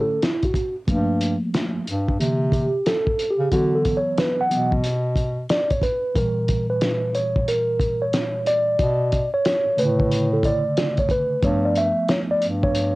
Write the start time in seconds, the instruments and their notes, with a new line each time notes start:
Already playing: bass clarinet A2, tine electric piano D3 A3 C#4
0.01 tine electric piano A4
0.23 tine electric piano E4, snare, closed hi-hat
0.43 tine electric piano F#4, kick, closed hi-hat
0.54 kick, closed hi-hat
0.87 bass clarinet G2, tine electric piano F3 A3 A#3, kick, closed hi-hat
1.21 closed hi-hat
1.54 snare, closed hi-hat
1.74 bass clarinet G2
1.86 bass clarinet G2, closed hi-hat
2.08 kick
2.19 bass clarinet C3, tine electric piano D3 E3 A#3, closed hi-hat
2.52 tine electric piano G4, kick, closed hi-hat
2.86 tine electric piano A4, snare, closed hi-hat
3.07 kick
3.19 closed hi-hat
3.31 tine electric piano G4
3.39 bass clarinet C#3
3.51 bass clarinet D3, tine electric piano E3 F#3 B3 F#4, kick, closed hi-hat
3.75 tine electric piano A4
3.85 kick, closed hi-hat
3.97 tine electric piano C#5
4.17 tine electric piano B4, snare, closed hi-hat
4.38 bass clarinet B2, tine electric piano F#5
4.50 bass clarinet B2, tine electric piano E3 F#3 B3, closed hi-hat
4.72 kick
4.84 closed hi-hat
5.16 kick, closed hi-hat
5.49 tine electric piano D5, snare, closed hi-hat
5.70 tine electric piano C#5, kick, closed hi-hat
5.82 tine electric piano B4, kick, closed hi-hat
6.15 tine electric piano A#2 E3 G3 A#4, kick, closed hi-hat
6.48 kick, closed hi-hat
6.70 tine electric piano B4
6.81 snare, closed hi-hat
7.15 tine electric piano C#5, closed hi-hat
7.36 kick
7.48 tine electric piano A#4, closed hi-hat
7.80 kick, closed hi-hat
8.02 tine electric piano C#5
8.13 snare, closed hi-hat
8.46 tine electric piano D5, closed hi-hat
8.79 bass clarinet B2, kick, closed hi-hat
9.12 kick, closed hi-hat
9.34 tine electric piano C#5
9.45 snare, closed hi-hat
9.66 bass clarinet A2
9.77 bass clarinet A2, tine electric piano C#3 D3 A3 B4, closed hi-hat
10.00 kick
10.12 closed hi-hat
10.33 tine electric piano A4
10.43 tine electric piano D5, kick, closed hi-hat
10.77 snare, closed hi-hat
10.97 tine electric piano C#5, kick, closed hi-hat
11.09 tine electric piano B4, kick, closed hi-hat
11.43 bass clarinet G2, tine electric piano F3 A3 B3 C#5, kick, closed hi-hat
11.65 tine electric piano D5
11.76 tine electric piano E5, closed hi-hat
12.09 tine electric piano C#5, snare, closed hi-hat
12.29 bass clarinet G2, tine electric piano D5
12.41 bass clarinet G2, closed hi-hat
12.63 tine electric piano C#5, kick
12.75 closed hi-hat